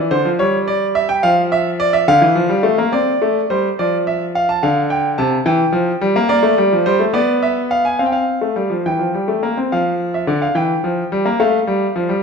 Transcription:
Already playing: E3
0.11 D3 C5
0.25 F3
0.39 G3 C#5
0.68 D5
0.95 E5
1.09 G5
1.23 F3 F5
1.52 E5
1.80 D5
1.93 E5
2.08 D3 F5
2.22 E3
2.35 F3
2.49 G3
2.63 A3
2.78 A#3
2.92 C4 D5
3.22 A3
3.50 G3 C5
3.79 F3 D5
4.07 E5
4.35 F5
4.49 A5
4.63 D3 F5
4.90 G5
5.18 C3 A5
5.46 E3 G5
5.72 F3
6.01 G3
6.16 A#3
6.29 A#3 D5
6.43 A3
6.58 G3
6.73 F3
6.86 G3 C5
7.00 A3
7.13 B3 D5
7.43 E5
7.71 F5
7.85 G#5
7.99 C4 F5
8.06 G5
8.12 F5
8.41 A3
8.56 G3
8.70 F3
8.86 E3 G5
8.99 F3
9.15 G3
9.28 A3
9.43 A#3
9.57 C4
9.72 F3 F5
10.14 E5
10.27 D3 D5
10.42 F5
10.55 E3 G5
10.84 F3
11.12 G3
11.25 A#3
11.40 A3 F5
11.67 G3
11.96 F3
12.09 G3

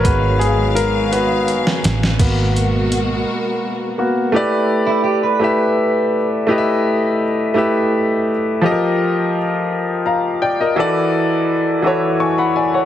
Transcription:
Already playing: D#3 F#3 G#3 A#4 B4 C#5
0.03 G#1 G#3 B3 F#4 B4 F5, kick, closed hi-hat
0.39 G#4, closed hi-hat
0.75 A#4, closed hi-hat
1.12 B3 F#4 A#4 B4, closed hi-hat
1.48 F#1, closed hi-hat
1.67 snare
1.84 A1, snare, closed hi-hat
2.03 snare
2.19 G#1 B2 G#3 A#3 B3 F#4 A#4, kick, closed hi-hat, crash
2.56 closed hi-hat
2.92 closed hi-hat
3.98 A#3 B3 F#4
4.32 A3 E4 G4 B4
4.36 D5
4.87 E4
5.04 G4
5.23 B4
5.39 A3 E4 G4 B4
5.44 E5
6.47 A3 E4 G4 B4
6.51 D#5
6.58 E5
7.54 A3 E4 G4 B4
7.58 E5
8.61 F3 F4 G4 A4
8.66 D#5
8.71 A#4
10.06 F5 A#5
10.42 D5 G5
10.61 A#4 D#5
10.76 E3 E4 F#4 A4 D5
11.82 E3 E4 F#4 A4
11.87 C#5
12.20 G#5 C#6
12.38 F#5 B5
12.56 D5 G#5
12.74 C#5 F#5

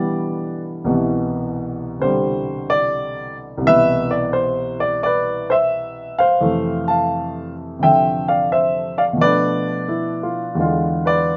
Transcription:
Already playing: G2 B2 D3 E3 F3 G3 B3 B4 D5
0.84 C2 B2 C3 E3
2.00 C3 D3 G3 C5
2.70 D5
3.57 C2
3.62 C3 E3
3.67 B2 B4 E5
4.11 D5
4.33 C5
4.80 D5
5.03 B4 D5
5.50 C5 E5
6.19 C5 F5
6.41 F2 C3 E3 A3
6.88 F5 A5
7.79 C3 D3 F3 G5
7.83 E5
8.28 D5 F5
8.52 C5 E5
8.98 D5 F5
9.13 B2 F3
9.20 A3 B4 D5
9.24 D4
9.88 E4
10.23 F4
10.55 E2 D3 G#3
10.60 F4
11.05 B4 D5

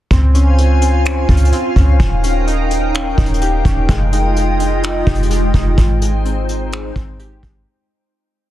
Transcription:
0.11 C#2 C4 F4 C5 F5 G#5, kick, closed hi-hat
0.34 C#4, closed hi-hat
0.58 closed hi-hat
0.82 C4, closed hi-hat
1.05 C#4, finger snap, closed hi-hat
1.29 C#2 F4, kick, closed hi-hat
1.37 closed hi-hat
1.45 closed hi-hat
1.52 C4, closed hi-hat
1.76 C#2 C#4, kick, closed hi-hat
2.00 D#1 D#4 A#4 G5, kick, closed hi-hat
2.24 C#4, closed hi-hat
2.47 D#4, closed hi-hat
2.71 closed hi-hat
2.94 C#4, finger snap, closed hi-hat
3.18 D#1 D#4, kick, closed hi-hat
3.26 closed hi-hat
3.34 closed hi-hat
3.41 G4, closed hi-hat
3.65 D#1 C#4, kick, closed hi-hat
3.89 F1 G#3 F4 D#5, kick, closed hi-hat
4.12 D#4, closed hi-hat
4.36 closed hi-hat
4.60 G#3, closed hi-hat
4.83 D#4, finger snap, closed hi-hat
5.07 F1 G4, kick, closed hi-hat
5.15 closed hi-hat
5.23 closed hi-hat
5.30 G#3, closed hi-hat
5.54 F1 D#4, kick, closed hi-hat
5.78 G#1 D#4 C5, kick, closed hi-hat
6.02 G#3, closed hi-hat
6.25 C4, closed hi-hat
6.49 closed hi-hat
6.72 G#3, finger snap, closed hi-hat
6.96 G#1 C4, kick, closed hi-hat
7.19 G4, closed hi-hat
7.43 G#1 G#3, kick, closed hi-hat

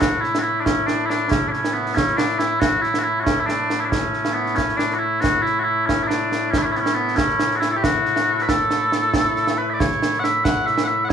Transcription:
Already playing: A2 A3 E4
0.00 F#4, concert bass drum, snare
0.21 E4, snare
0.35 snare
0.39 E4 F#4
0.60 D4
0.65 C#4, concert bass drum, snare
0.86 D4, snare
1.06 D4 E4
1.10 snare
1.30 C#4, concert bass drum, snare
1.48 C#4 D4
1.54 snare
1.64 snare
1.73 B3
1.86 snare
1.95 C#4, concert bass drum, snare
2.07 snare
2.17 D4, snare
2.39 E4, snare
2.60 F#4, concert bass drum, snare
2.82 E4, snare
2.94 snare
2.99 F#4
3.03 E4
3.20 C#4 F#4
3.27 concert bass drum, snare
3.40 E4
3.46 D4, snare
3.70 snare
3.80 E4
3.85 D4
3.90 C#4, concert bass drum, snare
4.14 snare
4.25 snare
4.33 B3
4.46 snare
4.56 C#4, concert bass drum, snare
4.69 snare
4.77 D4, snare
4.91 F#4, snare
4.99 E4
5.21 F#4, concert bass drum, snare
5.42 E4, snare
5.59 F#4
5.64 E4
5.86 C#4, concert bass drum, snare
6.03 E4
6.07 D4, snare
6.32 snare
6.51 C#4, concert bass drum, snare
6.58 E4
6.62 C#4 D4
6.72 E4, snare
6.76 B3 C#4
6.86 snare
6.94 B3
7.08 snare
7.16 C#4, concert bass drum, snare
7.29 snare
7.39 snare
7.51 snare
7.56 E4 F#4
7.62 snare
7.72 A4
7.76 G4
7.83 F#4, concert bass drum, snare
8.06 snare
8.16 snare
8.39 B4, snare
8.48 A4, concert bass drum, snare
8.71 snare
8.92 snare
9.14 concert bass drum, snare
9.36 snare
9.47 snare
9.58 B4
9.70 D5 E5
9.80 C#5, concert bass drum, snare
10.03 snare
10.13 snare
10.20 F#5
10.24 E5, snare
10.44 F#5, concert bass drum, snare
10.66 E5, snare
10.78 snare
10.84 E5 F#5
11.05 F#5
11.09 C#5

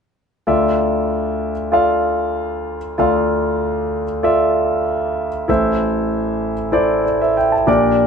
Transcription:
0.47 D2 D3 F4 A4 D5 E5
1.72 F4 A4 D5 F5
2.98 D2 D3 F4 A4 D5 F5
4.23 F4 A4 D5 E5
5.48 A1 A2 E4 A4 C5 E5
6.72 E4 A4 C5 D5
7.05 D5
7.21 C5 E5
7.37 E5 G5
7.52 A5
7.67 A#1 A#2 D4 G4 A#4 D5

